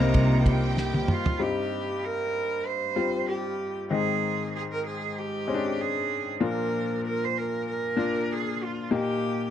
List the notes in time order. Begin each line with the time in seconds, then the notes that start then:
Already playing: C2 G2 C3 G3 A#3 D#4 F4 A#4 A#5
0.00 A#3 C4 D#4
0.14 C2, kick, ride
0.46 G4 G5, kick, ride
0.77 snare
0.94 high tom
1.08 F4, mid tom
1.26 floor tom
1.39 G2 G3 C4 D#4 G4
2.05 A#4
2.66 C5
2.96 G3 C4 F4
3.29 G4
3.90 G#2 D#3 G#3 C4 D#4 G#4
4.55 G#4
4.72 A#4
4.86 G#4
5.18 G4
5.48 G#3 C4 C#4
5.54 D4
5.81 G#4
6.40 A#2 F3 A#3 D4 F4 A#4
7.06 A#4
7.24 C5
7.38 A#4
7.68 A#4
7.96 A#3 D4 F4
8.32 G#4
8.63 F4
8.91 A#2 A#3 D#4 G4
8.95 G4